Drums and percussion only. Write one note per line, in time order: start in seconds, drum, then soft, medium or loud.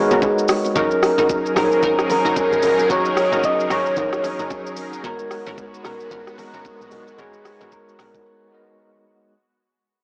0.11 shaker medium
0.22 kick loud
0.22 high bongo medium
0.22 low bongo medium
0.22 shaker medium
0.38 shaker medium
0.48 cross-stick loud
0.48 open hi-hat medium
0.48 high bongo medium
0.48 shaker loud
0.65 high bongo soft
0.65 shaker medium
0.76 kick loud
0.76 low conga medium
0.76 shaker medium
0.91 shaker medium
1.03 cross-stick loud
1.03 open hi-hat medium
1.03 shaker medium
1.18 low bongo medium
1.18 shaker medium
1.29 kick loud
1.29 high bongo medium
1.29 shaker medium
1.46 shaker medium
1.56 cross-stick medium
1.56 open hi-hat medium
1.56 low bongo medium
1.56 shaker medium
1.72 shaker medium
1.83 kick loud
1.83 low conga medium
1.83 shaker medium
1.99 cross-stick medium
1.99 shaker medium
2.10 open hi-hat medium
2.10 low bongo medium
2.10 low conga medium
2.10 shaker loud
2.25 shaker medium
2.36 kick loud
2.36 high bongo medium
2.36 low bongo medium
2.36 shaker medium
2.53 shaker medium
2.63 open hi-hat medium
2.63 high bongo soft
2.63 shaker medium
2.79 high bongo soft
2.79 shaker medium
2.90 kick loud
2.90 low conga medium
2.90 shaker medium
3.05 shaker medium
3.17 cross-stick loud
3.17 open hi-hat medium
3.17 shaker medium
3.32 low bongo medium
3.32 shaker medium
3.43 kick loud
3.43 high bongo medium
3.43 shaker medium
3.60 shaker medium
3.70 cross-stick loud
3.70 open hi-hat medium
3.70 low bongo medium
3.70 shaker medium
3.86 shaker medium
3.97 kick loud
3.97 low conga medium
3.97 shaker medium
4.13 cross-stick medium
4.13 shaker medium
4.24 open hi-hat medium
4.24 low bongo medium
4.24 low conga medium
4.24 shaker loud
4.39 shaker medium
4.50 kick loud
4.50 high bongo medium
4.50 low bongo medium
4.50 shaker medium
4.67 shaker medium
4.77 open hi-hat medium
4.77 high bongo medium
4.77 shaker medium
4.93 high bongo soft
4.93 shaker medium
5.04 kick loud
5.04 low conga medium
5.04 shaker medium
5.19 shaker medium
5.31 cross-stick loud
5.31 open hi-hat soft
5.31 shaker medium
5.46 low bongo medium
5.46 shaker medium
5.58 kick loud
5.58 high bongo medium
5.58 shaker medium
5.74 shaker medium
5.85 cross-stick medium
5.85 open hi-hat soft
5.85 low bongo medium
5.85 shaker medium
6.00 shaker medium
6.11 kick loud
6.11 low conga medium
6.11 shaker medium
6.27 cross-stick medium
6.27 shaker medium
6.38 open hi-hat medium
6.38 low bongo medium
6.38 low conga medium
6.38 shaker medium
6.54 shaker medium
6.65 kick loud
6.65 high bongo medium
6.65 low bongo medium
6.65 shaker medium
6.81 shaker medium
6.91 open hi-hat medium
6.91 high bongo medium
6.91 shaker loud
7.07 high bongo soft
7.07 shaker medium
7.18 kick loud
7.18 low conga medium
7.18 shaker medium
7.33 shaker medium
7.45 cross-stick loud
7.45 open hi-hat medium
7.45 shaker medium
7.61 low bongo medium
7.61 shaker medium
7.72 kick loud
7.72 high bongo medium
7.72 shaker medium
7.89 shaker medium
7.99 cross-stick medium
7.99 open hi-hat medium
7.99 low bongo medium
7.99 shaker medium
8.15 kick loud
8.15 shaker medium